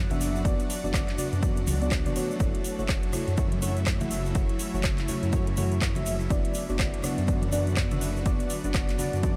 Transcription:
Already playing: F#3 B3 D4 F#4
0.10 F#1 B3 D4 F#4 E5, closed hi-hat, muted conga, high conga, low conga, shaker
0.21 open hi-hat, shaker
0.35 shaker
0.45 F#1 A3 B3 D4 F#4 D5, kick, closed hi-hat, muted conga, shaker
0.60 closed hi-hat, shaker
0.69 open hi-hat, muted conga, shaker
0.84 F#1 B3 D4 F#4 D5, high conga, shaker
0.94 kick, cross-stick, clap, closed hi-hat, muted conga, shaker
1.09 clap, closed hi-hat
1.18 B3 D4 F#4 D5, open hi-hat, muted conga, low conga, shaker
1.32 F#2, closed hi-hat, shaker
1.42 B3 D4 F#4 D5, kick, closed hi-hat, high conga, shaker
1.57 closed hi-hat, muted conga, shaker
1.67 C#2, open hi-hat, high conga, low conga, shaker
1.81 B3 D4 F#4 D5, closed hi-hat, muted conga, shaker
1.91 kick, cross-stick, clap, closed hi-hat, shaker
2.05 E1 B3 D4 F#4 D5, closed hi-hat, muted conga, high conga, low conga, shaker
2.16 B3 D4 F#4 C#5, open hi-hat, high conga, shaker
2.31 shaker
2.40 F#1 C#3 F#3 A3 E4 F#4 C#5, kick, closed hi-hat, muted conga, shaker
2.55 closed hi-hat
2.64 open hi-hat, muted conga, shaker
2.79 F#1 A3 E4 F#4 C#5, shaker
2.89 kick, cross-stick, clap, closed hi-hat, muted conga, shaker
3.03 closed hi-hat
3.12 A3 E4 F#4 C#5, cross-stick, open hi-hat, muted conga, low conga, shaker
3.28 F#2, closed hi-hat, shaker
3.37 A3 E4 F#4 C#5, kick, closed hi-hat, high conga, shaker
3.52 closed hi-hat, muted conga, high conga
3.62 F#2 A3 E4 F#4 C#5, open hi-hat, high conga, shaker
3.77 closed hi-hat, muted conga, shaker
3.87 kick, cross-stick, clap, closed hi-hat, shaker
4.00 F#1 A3 E4 F#4 E5, closed hi-hat, muted conga, high conga, low conga, shaker
4.11 open hi-hat, shaker
4.25 shaker
4.35 F#1 A3 E4 F#4 C#5, kick, closed hi-hat, muted conga, shaker
4.49 closed hi-hat
4.59 open hi-hat, muted conga, shaker
4.74 F#1 A3 E4 F#4 C#5, high conga, shaker
4.83 kick, cross-stick, clap, closed hi-hat, muted conga, shaker
4.98 clap, closed hi-hat
5.07 A3 E4 F#4 C#5, open hi-hat, muted conga, low conga, shaker
5.23 F#2, closed hi-hat, shaker
5.33 A3 E4 F#4 C#5, kick, closed hi-hat, high conga, shaker
5.47 closed hi-hat, muted conga
5.57 F#2 A3 E4 F#4 C#5, open hi-hat, high conga, low conga, shaker
5.72 closed hi-hat, muted conga, shaker
5.81 kick, cross-stick, clap, closed hi-hat, shaker
5.95 F#1 A3 E4 F#4 E5, closed hi-hat, muted conga, high conga, low conga, shaker
6.06 open hi-hat, high conga, shaker
6.20 shaker
6.30 F#1 D3 F#3 B3 D4 F#4 D5, kick, closed hi-hat, shaker
6.45 closed hi-hat
6.54 open hi-hat, muted conga, shaker
6.69 F#1 B3 D4 F#4 D5, shaker
6.79 kick, cross-stick, clap, closed hi-hat, muted conga, shaker
6.94 closed hi-hat
7.02 B3 D4 F#4 D5, cross-stick, open hi-hat, muted conga, low conga, shaker
7.18 F#2, closed hi-hat, shaker
7.28 B3 D4 F#4 D5, kick, closed hi-hat, high conga, shaker
7.42 closed hi-hat, muted conga, high conga
7.51 F#2 B3 D4 F#4 D5, open hi-hat, high conga, shaker
7.66 closed hi-hat, muted conga, shaker
7.77 kick, cross-stick, clap, closed hi-hat, shaker
7.91 F#1 B3 D4 F#4 E5, closed hi-hat, muted conga, high conga, low conga, shaker
8.01 open hi-hat, shaker
8.16 shaker
8.26 F#1 B3 D4 F#4 D5, kick, closed hi-hat, muted conga, shaker
8.40 closed hi-hat, shaker
8.50 open hi-hat, muted conga, shaker
8.64 F#1 B3 D4 F#4 D5, closed hi-hat, shaker
8.74 kick, cross-stick, clap, closed hi-hat, muted conga, shaker
8.89 clap, closed hi-hat, shaker
8.98 B3 D4 F#4 D5, open hi-hat, muted conga, low conga, shaker
9.13 F#2, closed hi-hat, shaker
9.23 B3 D4 F#4 D5, kick, closed hi-hat, high conga, shaker

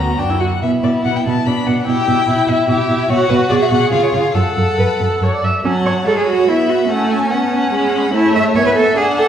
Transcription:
Already playing: D2 B3 F#4 A#5
0.18 F#2 D4 G5
0.30 E4
0.40 F#4 F#5
0.61 B2 B3 E4 E5
0.83 B2 B3 D5
1.04 B2 B3 F#5
1.16 G5
1.25 B2 B3 A5
1.46 B2 B3 D4 B5
1.66 B2 B3 F#5
1.87 B2 E4 G4 G5
2.08 B2 E4
2.27 B2 E4
2.48 B2 E4 E5
2.68 B2 E4 G4 E5
2.89 B2 E4
3.09 B2 F#4 C#5
3.29 B2 F#4 B4
3.49 B2 G#4 D5
3.62 E5
3.71 B2 G#4 F#5
3.92 C#3 F4 G#4 F5
4.03 C#5
4.13 C#3 G#4 F5
4.35 F#2 A4 F#5
4.57 F#2 A4
4.78 F#2 B4
5.00 F#2 A4
5.22 F#2 C#5
5.34 D5
5.43 F#2 E5
5.65 F#3 C#4 F#5 A5
5.86 C#5
6.07 G#3 A4 C#5 B5
6.18 G#4
6.27 F#4
6.48 B3 E4 E5
6.69 F#4
6.90 A3 C#4 F#5 A5
7.11 G#5
7.31 B3 F#5 A5
7.73 G#3 B5
8.14 A3 E4 C#5 A5
8.35 E5
8.55 B3 C#5 E5 G#5
8.66 B4
8.76 A4
8.96 D4 G#4 F#5
9.17 A4

